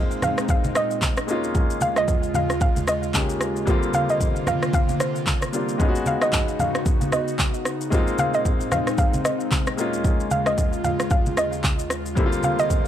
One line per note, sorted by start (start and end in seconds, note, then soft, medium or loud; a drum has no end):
0.00 1.27 A#2 medium
0.00 1.24 G#3 medium
0.00 1.27 G#3 medium
0.00 1.24 A#3 medium
0.00 1.25 C4 medium
0.00 1.27 C4 medium
0.00 1.25 D#4 medium
0.00 1.27 D#4 medium
0.00 1.26 F4 medium
0.00 0.24 D#5 loud
0.11 shaker soft
0.22 0.49 F5 loud
0.22 cross-stick medium
0.22 high conga medium
0.22 low conga medium
0.22 shaker medium
0.38 cross-stick loud
0.38 shaker soft
0.49 0.77 F5 loud
0.49 kick loud
0.49 low conga medium
0.49 shaker medium
0.64 high conga medium
0.64 shaker medium
0.75 1.25 D#5 medium
0.75 cross-stick loud
0.75 shaker medium
0.91 shaker soft
1.02 kick medium
1.02 clap loud
1.02 high conga medium
1.02 shaker medium
1.17 cross-stick loud
1.17 shaker medium
1.27 3.65 D#2 medium
1.27 3.65 C#3 medium
1.27 3.10 G#3 medium
1.27 3.65 G#3 medium
1.27 3.10 A#3 medium
1.27 3.11 C#4 medium
1.27 3.11 D#4 medium
1.27 3.65 F4 medium
1.27 shaker medium
1.31 3.12 F4 medium
1.44 shaker medium
1.55 kick loud
1.55 low conga medium
1.55 shaker medium
1.70 shaker medium
1.81 1.98 F5 loud
1.81 high conga medium
1.81 shaker medium
1.96 2.36 D#5 loud
1.96 cross-stick medium
1.96 shaker medium
2.08 kick medium
2.08 low conga medium
2.08 shaker medium
2.23 shaker soft
2.34 2.60 F5 medium
2.34 high conga medium
2.34 low conga medium
2.34 shaker medium
2.50 cross-stick medium
2.50 shaker soft
2.61 2.86 F5 medium
2.61 kick loud
2.61 low conga medium
2.61 shaker medium
2.76 high conga medium
2.76 shaker medium
2.88 3.38 D#5 medium
2.88 cross-stick loud
2.88 shaker medium
3.03 shaker medium
3.14 3.67 G#3 medium
3.14 3.65 A#3 soft
3.14 3.68 C#4 soft
3.14 3.68 D#4 soft
3.14 3.68 G4 medium
3.14 kick medium
3.14 clap loud
3.14 high conga medium
3.14 shaker medium
3.29 shaker medium
3.41 cross-stick loud
3.41 shaker medium
3.56 shaker medium
3.66 5.78 C3 medium
3.66 5.78 D3 medium
3.66 5.50 D3 medium
3.66 5.49 G3 medium
3.66 5.49 A#3 medium
3.66 5.78 A#3 medium
3.66 5.50 C4 medium
3.66 5.78 F4 loud
3.66 kick loud
3.66 low conga medium
3.66 shaker medium
3.70 5.51 F4 medium
3.83 shaker medium
3.94 4.10 F5 loud
3.94 high conga medium
3.94 shaker medium
4.09 4.49 D#5 loud
4.09 shaker medium
4.20 kick medium
4.20 low conga medium
4.20 shaker medium
4.36 shaker soft
4.47 4.73 F5 loud
4.47 cross-stick medium
4.47 high conga medium
4.47 low conga medium
4.47 shaker medium
4.63 cross-stick loud
4.63 shaker soft
4.73 5.01 F5 loud
4.73 kick loud
4.73 low conga medium
4.73 shaker medium
4.89 high conga medium
4.89 shaker medium
5.00 5.50 C5 medium
5.00 cross-stick loud
5.00 shaker medium
5.16 shaker soft
5.26 kick medium
5.26 clap loud
5.26 high conga medium
5.26 shaker medium
5.42 cross-stick medium
5.42 shaker medium
5.53 5.79 G3 medium
5.53 5.80 A#3 soft
5.53 5.80 C4 soft
5.53 5.80 D4 soft
5.53 5.80 F4 medium
5.53 shaker medium
5.69 shaker medium
5.78 7.90 C#3 medium
5.78 7.87 G#3 medium
5.78 7.88 B3 medium
5.78 7.90 B3 medium
5.78 7.88 C#4 medium
5.78 7.90 D#4 medium
5.78 7.89 D#4 medium
5.78 7.90 F#4 loud
5.78 kick loud
5.78 low conga medium
5.78 shaker medium
5.82 5.88 F4 medium
5.88 7.93 F#4 medium
5.95 shaker medium
6.06 6.21 F5 loud
6.06 high conga medium
6.06 shaker medium
6.22 6.61 D#5 loud
6.22 cross-stick loud
6.22 shaker medium
6.33 kick medium
6.33 clap loud
6.33 low conga medium
6.33 shaker medium
6.48 shaker soft
6.59 7.14 F5 loud
6.59 high conga medium
6.59 low conga medium
6.59 shaker medium
6.75 cross-stick loud
6.75 shaker soft
6.86 kick loud
6.86 low conga medium
6.86 shaker medium
7.01 high conga medium
7.01 shaker medium
7.12 7.62 D#5 medium
7.12 cross-stick loud
7.12 high conga soft
7.12 shaker medium
7.28 shaker soft
7.39 kick medium
7.39 clap loud
7.39 high conga medium
7.39 shaker medium
7.54 shaker medium
7.65 cross-stick loud
7.65 shaker medium
7.81 shaker medium
7.90 9.76 A#2 medium
7.90 9.73 G#3 medium
7.90 12.13 G#3 medium
7.90 9.74 A#3 medium
7.90 9.76 C4 medium
7.90 9.74 C4 medium
7.90 9.76 D#4 loud
7.90 9.75 D#4 medium
7.90 kick loud
7.90 low conga medium
7.90 shaker medium
7.94 9.75 F4 medium
8.08 shaker medium
8.18 8.35 F5 loud
8.18 high conga medium
8.18 shaker medium
8.34 8.73 D#5 loud
8.34 shaker medium
8.45 kick medium
8.45 low conga medium
8.45 shaker medium
8.61 shaker soft
8.72 8.97 F5 loud
8.72 cross-stick medium
8.72 high conga medium
8.72 low conga medium
8.72 shaker medium
8.87 cross-stick medium
8.87 shaker soft
8.98 9.23 F5 medium
8.98 kick loud
8.98 low conga medium
8.98 shaker medium
9.14 high conga medium
9.14 shaker medium
9.25 9.74 D#5 medium
9.25 cross-stick loud
9.25 shaker medium
9.40 shaker medium
9.51 kick medium
9.51 clap loud
9.51 high conga medium
9.51 shaker medium
9.67 cross-stick loud
9.67 shaker medium
9.76 12.14 D#2 medium
9.76 12.14 C#3 medium
9.76 11.86 G#3 medium
9.76 11.86 A#3 medium
9.76 11.87 C#4 medium
9.76 11.87 D#4 medium
9.76 12.14 F4 medium
9.76 shaker medium
9.80 11.88 F4 medium
9.93 shaker medium
10.04 kick loud
10.04 low conga medium
10.04 shaker medium
10.20 shaker medium
10.31 10.47 F5 loud
10.31 high conga medium
10.31 shaker medium
10.46 10.85 D#5 loud
10.46 cross-stick loud
10.46 shaker medium
10.58 kick medium
10.58 low conga medium
10.58 shaker medium
10.73 shaker soft
10.84 11.10 F5 loud
10.84 high conga medium
10.84 low conga medium
10.84 shaker medium
11.00 cross-stick loud
11.00 shaker soft
11.10 11.38 F5 medium
11.10 kick loud
11.10 low conga medium
11.10 shaker medium
11.26 high conga medium
11.26 shaker medium
11.37 11.87 D#5 medium
11.37 cross-stick loud
11.37 shaker medium
11.53 shaker medium
11.64 kick medium
11.64 clap loud
11.64 high conga medium
11.64 shaker medium
11.79 shaker medium
11.90 cross-stick loud
11.90 shaker medium
12.06 shaker medium
12.15 12.88 C3 medium
12.15 12.88 D3 medium
12.15 12.88 G3 medium
12.15 12.88 A#3 medium
12.15 12.88 C4 medium
12.15 12.88 F4 loud
12.15 kick loud
12.15 riser medium
12.15 low conga medium
12.15 shaker medium
12.20 12.26 E4 medium
12.26 12.88 F4 medium
12.32 shaker medium
12.43 12.58 F5 loud
12.43 high conga medium
12.43 shaker loud
12.59 12.88 D#5 loud
12.59 shaker medium
12.70 kick medium
12.70 low conga medium
12.70 shaker medium